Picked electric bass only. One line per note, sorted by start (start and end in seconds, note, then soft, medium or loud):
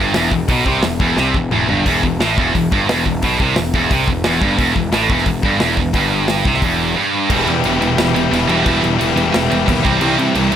0.00 0.14 G1 medium
0.16 0.31 E1 medium
0.31 0.48 E1 medium
0.48 0.65 B1 medium
0.66 0.82 C2 loud
0.83 0.99 E1 medium
1.00 1.16 E1 medium
1.17 1.34 C2 medium
1.35 1.51 E1 medium
1.52 1.68 E1 medium
1.68 1.85 G1 medium
1.86 2.02 E1 medium
2.03 2.19 E1 medium
2.21 2.36 A1 medium
2.38 2.53 E1 medium
2.55 2.70 E1 medium
2.72 2.88 G1 medium
2.89 3.05 E1 medium
3.06 3.22 E1 medium
3.23 3.39 B1 medium
3.40 3.55 C2 medium
3.57 3.73 E1 medium
3.74 3.89 E1 medium
3.91 4.06 C2 medium
4.08 4.24 E1 medium
4.24 4.40 E1 medium
4.42 4.57 G1 medium
4.59 4.74 E1 loud
4.76 4.92 E1 medium
4.93 5.09 A1 medium
5.10 5.26 E1 medium
5.26 5.42 E1 medium
5.44 5.59 G1 loud
5.61 5.77 E1 medium
5.77 5.93 E1 medium
5.93 6.41 G1 medium
6.45 6.61 C2 medium
6.62 6.94 E1 medium
7.30 7.44 E1 loud
7.47 7.61 E2 loud
7.64 7.78 E1 medium
7.81 7.95 E1 loud
7.97 8.25 E1 medium
8.31 8.45 E1 medium
8.48 8.62 E1 medium
8.66 8.80 E1 loud
8.83 8.97 E1 medium
9.00 9.14 E1 medium
9.16 9.30 E1 medium
9.34 9.48 E1 medium
9.51 9.64 E1 medium
9.68 9.82 D#2 medium
9.85 9.99 C2 medium
10.01 10.15 C2 loud
10.19 10.32 C3 loud
10.35 10.49 C2 medium
10.52 10.56 C2 medium